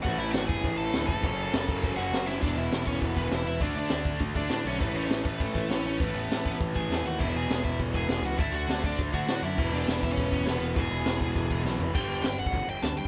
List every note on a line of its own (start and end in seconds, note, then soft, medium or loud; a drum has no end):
0.03 0.17 A1 loud
0.03 1.21 A2 medium
0.03 1.22 E3 loud
0.03 1.23 A3 loud
0.03 0.19 F#4 medium
0.03 0.18 F#5 loud
0.03 kick loud
0.03 crash medium
0.18 0.32 A1 loud
0.18 0.33 E4 medium
0.18 0.31 E5 loud
0.31 0.46 A1 loud
0.31 0.47 F#4 medium
0.31 0.47 F#5 loud
0.31 snare loud
0.31 crash medium
0.47 0.61 F#1 medium
0.47 0.76 G#4 medium
0.47 0.77 G#5 loud
0.47 kick loud
0.64 0.89 A1 loud
0.64 kick loud
0.64 crash medium
0.77 1.07 A4 medium
0.77 1.06 A5 loud
0.94 1.06 D2 medium
0.94 snare loud
0.94 crash medium
1.06 1.21 F#1 medium
1.06 1.22 A2 medium
1.06 1.22 E3 medium
1.06 1.21 A3 medium
1.06 2.09 A4 medium
1.06 1.74 A5 loud
1.06 kick medium
1.23 1.49 F#1 loud
1.23 2.41 F#2 medium
1.23 2.42 C#3 loud
1.23 2.42 F#3 loud
1.23 kick loud
1.23 crash medium
1.53 1.66 F#1 loud
1.53 snare loud
1.53 crash medium
1.68 1.81 F#1 loud
1.68 kick loud
1.74 2.07 G#5 loud
1.84 1.96 F#1 loud
1.84 kick medium
1.84 crash medium
1.96 2.10 F#1 medium
1.96 2.24 F#4 medium
1.96 2.27 F#5 medium
2.12 2.38 F#1 medium
2.12 snare loud
2.12 crash medium
2.27 2.41 F#2 medium
2.27 2.41 C#3 medium
2.27 2.41 F#3 medium
2.27 2.41 E4 medium
2.27 2.42 E5 medium
2.27 snare medium
2.41 2.55 E1 medium
2.41 3.15 E2 medium
2.41 3.16 B2 medium
2.41 3.15 E3 medium
2.41 2.56 D4 medium
2.41 2.57 D5 loud
2.41 kick loud
2.41 open hi-hat medium
2.56 2.69 E1 medium
2.56 2.86 E4 medium
2.56 2.85 E5 medium
2.56 open hi-hat medium
2.71 2.84 E1 medium
2.71 snare loud
2.71 open hi-hat medium
2.87 3.00 E1 medium
2.87 3.01 C#4 medium
2.87 3.00 C#5 medium
2.87 kick medium
2.87 open hi-hat medium
3.00 3.14 E1 loud
3.00 3.16 B3 medium
3.00 3.16 B4 medium
3.00 kick medium
3.00 open hi-hat medium
3.16 3.29 E1 medium
3.16 3.29 E2 medium
3.16 3.31 B2 medium
3.16 3.30 E3 medium
3.16 3.31 B3 medium
3.16 3.32 B4 medium
3.16 kick medium
3.16 open hi-hat medium
3.31 3.44 E1 medium
3.31 3.60 E2 medium
3.31 3.60 B2 medium
3.31 3.61 E3 medium
3.31 3.47 E4 medium
3.31 3.46 E5 medium
3.31 snare medium
3.31 open hi-hat medium
3.46 3.59 E1 medium
3.46 3.61 E4 medium
3.46 3.61 E5 medium
3.46 open hi-hat medium
3.60 3.73 D2 medium
3.60 4.35 D3 medium
3.60 4.37 A3 loud
3.60 3.75 D4 medium
3.60 4.34 D4 loud
3.60 3.77 D5 medium
3.60 kick loud
3.60 open hi-hat medium
3.75 3.89 D2 medium
3.75 4.19 D4 medium
3.75 4.19 D5 medium
3.75 open hi-hat medium
3.90 4.16 D2 medium
3.90 snare loud
3.90 open hi-hat medium
4.05 kick medium
4.05 open hi-hat medium
4.20 4.33 D2 loud
4.20 kick loud
4.20 open hi-hat medium
4.35 4.48 D2 medium
4.35 4.48 D3 medium
4.35 4.50 A3 medium
4.35 4.50 D4 medium
4.35 4.64 D4 medium
4.35 4.67 D5 medium
4.35 kick medium
4.35 open hi-hat medium
4.49 4.63 A2 medium
4.49 4.78 D3 medium
4.49 4.79 A3 medium
4.49 4.80 D4 medium
4.49 snare loud
4.49 open hi-hat medium
4.65 4.78 B1 medium
4.65 4.81 C#4 medium
4.65 4.80 C#5 medium
4.65 open hi-hat medium
4.78 4.92 A1 medium
4.78 5.53 A2 medium
4.78 5.55 E3 medium
4.78 5.52 A3 loud
4.78 4.95 B3 medium
4.78 4.96 B4 medium
4.78 kick loud
4.78 crash medium
4.93 5.07 A1 medium
4.93 5.24 C#4 medium
4.93 5.27 C#5 medium
4.93 open hi-hat medium
5.10 5.23 A1 medium
5.10 snare loud
5.10 open hi-hat medium
5.25 5.38 A1 medium
5.25 5.40 B3 medium
5.25 5.42 B4 medium
5.25 kick loud
5.25 open hi-hat medium
5.40 5.53 A1 loud
5.40 5.54 A3 medium
5.40 5.53 A4 medium
5.40 kick loud
5.40 open hi-hat medium
5.54 5.68 A1 medium
5.54 5.69 A2 medium
5.54 5.71 E3 medium
5.54 5.69 A3 medium
5.54 5.70 A4 medium
5.54 kick medium
5.54 open hi-hat medium
5.69 5.83 A1 medium
5.69 5.97 A2 medium
5.69 6.00 E3 medium
5.69 6.00 A3 loud
5.69 5.84 C#4 medium
5.69 5.85 C#5 medium
5.69 snare loud
5.69 open hi-hat medium
5.86 5.98 A1 medium
5.86 6.00 C#4 medium
5.86 6.01 C#5 medium
5.86 open hi-hat medium
5.99 6.13 A1 medium
5.99 6.73 A2 medium
5.99 6.73 E3 medium
5.99 6.71 A3 loud
5.99 6.13 B3 medium
5.99 6.14 B4 loud
5.99 kick loud
5.99 open hi-hat medium
6.14 6.28 A1 loud
6.14 6.56 B3 medium
6.14 6.57 B4 medium
6.14 open hi-hat medium
6.30 6.56 A1 medium
6.30 snare loud
6.30 open hi-hat medium
6.46 kick medium
6.46 open hi-hat medium
6.61 6.73 A1 medium
6.61 kick loud
6.61 open hi-hat medium
6.73 6.88 A1 medium
6.73 6.88 A2 medium
6.73 6.89 E3 medium
6.73 6.88 A3 medium
6.73 7.03 G#4 medium
6.73 7.06 G#5 medium
6.73 kick medium
6.77 open hi-hat medium
6.89 7.02 E2 medium
6.89 7.18 A2 medium
6.89 7.19 E3 medium
6.89 7.19 A3 medium
6.89 snare loud
6.89 open hi-hat medium
7.04 7.17 D#2 medium
7.04 7.19 F#4 medium
7.04 7.19 F#5 loud
7.04 open hi-hat medium
7.19 7.33 E1 loud
7.19 7.93 E2 medium
7.19 7.92 B2 medium
7.19 7.91 E3 medium
7.19 7.33 E4 medium
7.19 7.35 E5 loud
7.19 kick loud
7.19 crash medium
7.34 7.47 E1 medium
7.34 7.63 G#4 medium
7.34 7.63 G#5 loud
7.34 open hi-hat medium
7.49 7.62 E1 medium
7.49 snare loud
7.49 open hi-hat medium
7.64 7.77 E1 medium
7.64 7.78 E4 medium
7.64 7.78 E5 loud
7.64 kick medium
7.64 open hi-hat medium
7.80 7.92 E1 loud
7.80 kick medium
7.80 open hi-hat medium
7.92 8.07 E1 medium
7.92 8.07 E2 medium
7.92 8.08 B2 medium
7.92 8.07 E3 medium
7.92 8.22 G#4 medium
7.92 kick medium
7.92 open hi-hat medium
7.97 8.26 G#5 loud
8.08 8.21 E1 medium
8.08 8.37 E2 medium
8.08 8.38 B2 medium
8.08 8.39 E3 medium
8.08 snare loud
8.08 open hi-hat medium
8.22 8.35 C#2 medium
8.22 8.38 F#4 medium
8.22 8.38 F#5 medium
8.22 open hi-hat medium
8.38 8.51 D2 medium
8.38 9.13 D3 loud
8.38 9.13 A3 medium
8.38 8.52 E4 medium
8.38 8.54 E5 loud
8.38 kick loud
8.38 open hi-hat medium
8.42 9.10 D4 medium
8.52 8.65 D2 medium
8.52 8.81 F#4 medium
8.52 8.85 F#5 loud
8.52 open hi-hat medium
8.68 8.93 D2 medium
8.68 snare loud
8.68 open hi-hat medium
8.83 8.97 D4 medium
8.83 8.99 D5 loud
8.83 kick medium
8.83 open hi-hat medium
8.98 9.11 D2 medium
8.98 kick loud
8.98 open hi-hat medium
9.12 9.26 D2 medium
9.12 9.26 D3 medium
9.12 9.26 A3 medium
9.12 9.26 D4 medium
9.12 9.41 F#4 medium
9.12 9.44 F#5 medium
9.12 kick medium
9.12 open hi-hat medium
9.27 9.40 A2 medium
9.27 9.56 D3 medium
9.27 9.56 A3 medium
9.27 9.57 D4 medium
9.27 snare loud
9.27 open hi-hat medium
9.42 9.55 F#2 medium
9.42 9.71 E4 medium
9.42 9.71 E5 loud
9.42 open hi-hat medium
9.57 9.71 E1 medium
9.57 10.30 E2 medium
9.57 10.31 B2 medium
9.57 10.29 E3 medium
9.57 kick loud
9.57 crash loud
9.72 9.85 E1 loud
9.72 10.01 D4 medium
9.72 10.04 D5 loud
9.72 open hi-hat medium
9.87 10.00 E1 medium
9.87 snare loud
9.87 open hi-hat medium
10.02 10.15 E1 medium
10.02 10.09 E4 medium
10.02 10.11 E5 loud
10.02 kick medium
10.02 open hi-hat medium
10.11 10.45 C#4 medium
10.11 10.49 C#5 medium
10.17 10.30 E1 medium
10.17 kick loud
10.17 open hi-hat medium
10.30 10.44 E1 medium
10.30 10.44 E2 medium
10.30 10.45 B2 medium
10.30 10.45 E3 medium
10.30 kick medium
10.30 open hi-hat medium
10.45 10.59 E1 medium
10.45 10.74 E2 medium
10.45 10.75 B2 medium
10.45 10.75 E3 loud
10.45 10.75 B3 medium
10.45 snare loud
10.45 open hi-hat medium
10.51 10.79 B4 medium
10.59 10.73 E1 medium
10.59 open hi-hat medium
10.76 10.89 E1 medium
10.76 11.49 E2 medium
10.76 11.50 B2 loud
10.76 11.49 E3 loud
10.76 11.62 G#4 medium
10.76 kick loud
10.76 open hi-hat medium
10.81 11.63 G#5 loud
10.90 11.03 E1 medium
10.90 open hi-hat medium
11.04 11.30 E1 loud
11.04 snare loud
11.04 open hi-hat medium
11.21 kick loud
11.21 open hi-hat medium
11.35 11.48 E1 loud
11.35 kick medium
11.35 open hi-hat medium
11.50 11.63 E1 medium
11.50 11.63 E2 medium
11.50 11.65 B2 medium
11.50 11.64 E3 medium
11.50 kick medium
11.50 open hi-hat medium
11.64 11.77 B1 loud
11.64 11.93 E2 medium
11.64 11.94 B2 medium
11.64 11.95 E3 medium
11.64 snare medium
11.78 11.95 G#1 medium
11.78 floor tom medium
11.94 12.05 G1 medium
11.94 12.22 G2 medium
11.94 12.22 D3 loud
11.94 12.24 G3 medium
11.94 12.22 G5 medium
11.94 kick loud
11.94 crash loud
11.94 crash medium
12.08 12.18 G1 medium
12.22 12.33 G1 loud
12.22 12.37 G2 medium
12.22 12.37 D3 medium
12.22 12.38 G5 medium
12.22 snare loud
12.22 crash medium
12.39 12.49 G1 medium
12.39 12.68 F#5 medium
12.46 kick medium
12.52 12.64 G1 loud
12.52 12.66 G2 medium
12.52 12.66 D3 medium
12.52 kick loud
12.52 crash medium
12.68 12.78 G1 medium
12.68 12.84 G5 medium
12.82 12.92 D2 medium
12.82 12.97 G2 medium
12.82 12.97 D3 medium
12.82 12.97 A5 medium
12.82 snare loud
12.82 crash medium
12.98 13.08 G2 medium
12.98 13.08 G5 loud